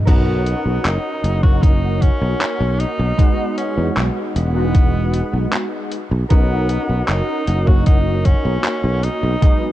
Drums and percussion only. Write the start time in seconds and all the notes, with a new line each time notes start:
0.07 kick, closed hi-hat, crash
0.47 closed hi-hat
0.85 clap, closed hi-hat
1.24 closed hi-hat
1.44 kick
1.63 kick, closed hi-hat
2.02 kick, closed hi-hat
2.41 clap, closed hi-hat
2.80 closed hi-hat
3.19 kick, closed hi-hat
3.58 closed hi-hat
3.97 clap, closed hi-hat
4.36 closed hi-hat
4.75 kick, closed hi-hat
5.13 closed hi-hat
5.53 clap, closed hi-hat
5.91 closed hi-hat
6.30 kick, closed hi-hat
6.69 closed hi-hat
7.08 clap, closed hi-hat
7.47 closed hi-hat
7.67 kick
7.86 kick, closed hi-hat
8.25 kick, closed hi-hat
8.64 clap, closed hi-hat
9.03 closed hi-hat
9.42 kick, closed hi-hat